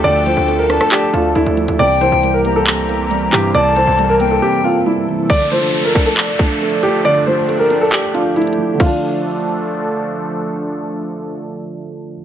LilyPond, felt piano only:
\new Staff \with { instrumentName = "Felt piano" } { \time 4/4 \key d \minor \tempo 4 = 137 <d f a d' d''>8 f8 a8 d'8 d''8 d'8 a8 f8 | c8 e8 g8 bes8 c'8 bes8 g8 e8 | c8 e8 g8 bes8 c'8 bes8 g8 e8 | d8 f8 a8 d'8 d''8 d'8 a8 f8 |
d8 f8 a8 d'8 d''8 d'8 a8 f8 | <d f a d'>1~ | <d f a d'>1 | }